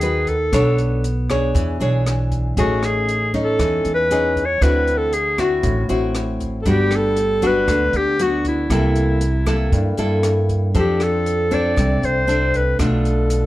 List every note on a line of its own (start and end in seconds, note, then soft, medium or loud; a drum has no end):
0.00 0.49 D#2 medium
0.00 0.50 D#3 medium
0.00 0.35 D#4 soft
0.00 0.35 F#4 soft
0.00 0.31 G#4 medium
0.00 0.35 B4 soft
0.00 closed hi-hat soft
0.27 0.79 A4 medium
0.27 kick soft
0.27 closed hi-hat soft
0.52 1.51 B1 medium
0.52 1.53 B3 medium
0.52 1.04 D4 medium
0.52 1.04 A4 medium
0.52 1.04 C#5 medium
0.52 kick soft
0.52 cross-stick medium
0.52 closed hi-hat soft
0.78 closed hi-hat soft
1.04 closed hi-hat soft
1.29 1.77 D4 medium
1.29 1.77 G#4 medium
1.29 1.77 C#5 medium
1.29 kick soft
1.29 cross-stick medium
1.29 closed hi-hat soft
1.55 1.79 E2 medium
1.55 2.55 E3 medium
1.55 kick medium
1.55 closed hi-hat soft
1.80 2.53 B1 medium
1.80 2.53 D4 medium
1.80 2.53 G#4 medium
1.80 2.54 C#5 medium
1.80 closed hi-hat soft
2.06 cross-stick medium
2.06 closed hi-hat soft
2.31 kick soft
2.31 closed hi-hat soft
2.57 3.55 A1 medium
2.57 3.57 A3 medium
2.57 3.30 C#4 medium
2.57 3.30 D#4 soft
2.57 2.87 F#4 medium
2.57 3.30 G#4 medium
2.57 kick medium
2.57 closed hi-hat soft
2.83 3.35 G#4 medium
2.83 cross-stick soft
2.83 closed hi-hat soft
3.09 closed hi-hat soft
3.34 4.06 C#4 medium
3.34 4.07 D#4 medium
3.34 kick soft
3.34 closed hi-hat soft
3.43 3.91 A4 medium
3.59 3.83 E2 medium
3.59 4.59 E3 soft
3.59 kick medium
3.59 cross-stick medium
3.59 closed hi-hat soft
3.85 4.58 E2 medium
3.85 closed hi-hat soft
3.94 4.47 B4 medium
4.11 4.44 C#4 soft
4.11 4.44 D#4 soft
4.11 4.44 G#4 medium
4.11 closed hi-hat soft
4.36 kick soft
4.36 closed hi-hat soft
4.46 4.64 C#5 medium
4.61 5.60 D2 medium
4.61 5.62 D3 medium
4.61 5.13 C4 soft
4.61 5.13 E4 medium
4.61 5.13 F#4 medium
4.61 4.99 B4 medium
4.61 kick medium
4.61 cross-stick medium
4.61 closed hi-hat soft
4.88 closed hi-hat soft
4.97 5.15 A4 medium
5.13 5.42 G#4 medium
5.13 closed hi-hat soft
5.38 5.85 C4 medium
5.38 5.85 E4 medium
5.38 5.86 F#4 medium
5.38 5.90 F#4 medium
5.38 kick soft
5.38 cross-stick medium
5.38 closed hi-hat soft
5.63 5.88 A1 medium
5.63 6.63 A2 medium
5.63 kick medium
5.63 closed hi-hat soft
5.89 6.62 A1 medium
5.89 6.62 C4 medium
5.89 6.62 E4 medium
5.89 6.62 F#4 medium
5.89 closed hi-hat soft
6.15 cross-stick soft
6.15 closed hi-hat soft
6.40 kick soft
6.40 closed hi-hat soft
6.62 7.64 G1 medium
6.62 7.66 G3 medium
6.62 7.17 B3 medium
6.62 7.17 D4 medium
6.62 6.71 A4 medium
6.62 kick medium
6.62 closed hi-hat soft
6.67 7.17 F#4 medium
6.67 6.97 G4 medium
6.91 cross-stick medium
6.91 closed hi-hat soft
6.96 7.48 A4 loud
7.16 closed hi-hat soft
7.42 8.15 B3 medium
7.42 8.15 D4 medium
7.42 8.15 F#4 medium
7.42 kick soft
7.42 closed hi-hat soft
7.46 7.99 B4 medium
7.68 7.92 D2 medium
7.68 8.68 D3 medium
7.68 kick soft
7.68 cross-stick medium
7.68 closed hi-hat soft
7.93 8.66 D2 medium
7.93 closed hi-hat soft
7.97 8.24 G4 medium
8.19 8.66 B3 soft
8.19 8.67 D4 soft
8.19 8.67 F#4 medium
8.19 8.46 F#4 medium
8.19 closed hi-hat soft
8.45 10.21 E4 medium
8.45 kick soft
8.45 closed hi-hat soft
8.70 9.68 C2 medium
8.70 9.70 C3 soft
8.70 9.21 A#3 medium
8.70 9.21 E4 medium
8.70 9.21 A4 medium
8.70 kick medium
8.70 cross-stick medium
8.70 closed hi-hat soft
8.96 closed hi-hat soft
9.21 closed hi-hat soft
9.46 9.94 A#3 medium
9.46 9.94 E4 medium
9.46 9.94 A4 medium
9.46 kick soft
9.46 cross-stick medium
9.46 closed hi-hat soft
9.72 9.96 G2 medium
9.72 10.72 G2 soft
9.72 kick medium
9.72 closed hi-hat soft
9.98 10.71 G2 medium
9.98 10.71 A#3 medium
9.98 10.71 E4 medium
9.98 10.71 A4 medium
9.98 closed hi-hat soft
10.23 cross-stick medium
10.23 closed hi-hat soft
10.49 kick soft
10.49 closed hi-hat soft
10.74 11.73 F2 medium
10.74 11.74 F3 medium
10.74 11.47 C4 soft
10.74 11.47 D4 soft
10.74 11.48 A4 medium
10.74 kick medium
10.74 closed hi-hat soft
10.79 11.05 G4 medium
11.00 11.56 A4 medium
11.00 cross-stick soft
11.00 closed hi-hat soft
11.26 closed hi-hat soft
11.51 12.24 C4 medium
11.51 12.24 D4 medium
11.51 12.24 A4 medium
11.51 12.07 D5 medium
11.51 kick soft
11.51 closed hi-hat soft
11.77 12.01 C2 medium
11.77 12.76 C3 medium
11.77 kick medium
11.77 cross-stick medium
11.77 closed hi-hat soft
12.02 12.75 C2 medium
12.02 12.58 C5 medium
12.02 closed hi-hat soft
12.27 12.61 C4 soft
12.27 12.61 D4 soft
12.27 12.61 A4 medium
12.27 closed hi-hat soft
12.54 12.80 B4 medium
12.54 kick soft
12.54 closed hi-hat soft
12.79 13.46 B1 medium
12.79 13.46 B2 medium
12.79 13.46 A3 medium
12.79 13.46 D4 medium
12.79 13.46 F4 medium
12.79 13.46 A4 medium
12.79 kick medium
12.79 cross-stick medium
12.79 closed hi-hat soft
13.05 closed hi-hat soft
13.30 closed hi-hat soft